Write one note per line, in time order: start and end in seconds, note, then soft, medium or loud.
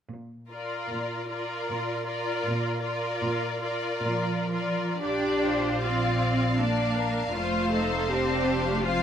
0.11 0.80 A#2 soft
0.51 1.29 F4 soft
0.51 1.30 A#4 soft
0.51 1.30 D5 soft
0.92 1.58 A#2 soft
1.30 2.05 F4 soft
1.30 2.06 A#4 soft
1.30 2.06 D5 soft
1.69 2.34 A#2 soft
2.06 2.81 F4 soft
2.06 2.82 A#4 soft
2.06 2.83 D5 soft
2.45 3.10 A#2 medium
2.82 3.60 F4 soft
2.82 3.61 A#4 soft
2.82 3.61 D5 soft
3.22 3.92 A#2 medium
3.63 4.51 F4 soft
3.63 4.52 A#4 soft
3.63 4.52 D5 soft
4.05 4.88 A#2 soft
4.05 4.98 F3 medium
4.52 5.00 F4 soft
4.52 5.00 A#4 soft
4.52 5.01 D5 soft
5.01 7.30 A#1 soft
5.01 5.84 D4 medium
5.01 6.56 F4 soft
5.01 5.80 G4 soft
5.01 5.81 D5 soft
5.01 5.42 D5 soft
5.45 5.84 C5 soft
5.83 6.58 C4 medium
5.83 6.59 F4 soft
5.83 6.59 D5 soft
5.83 8.81 F5 soft
6.59 7.34 A#3 soft
6.59 7.34 D4 soft
6.59 6.96 D5 soft
6.98 7.34 A#4 soft
7.33 9.03 F1 soft
7.33 8.09 A3 medium
7.33 7.71 F4 soft
7.33 8.83 C5 soft
7.72 8.10 D#4 soft
7.72 8.09 A4 soft
8.10 8.65 C4 medium
8.10 8.86 D4 soft
8.10 8.86 G4 soft
8.67 8.85 A3 medium
8.84 9.03 F3 medium
8.84 9.03 C4 soft
8.84 9.03 F4 soft
8.84 9.03 C5 soft
8.84 9.03 F5 soft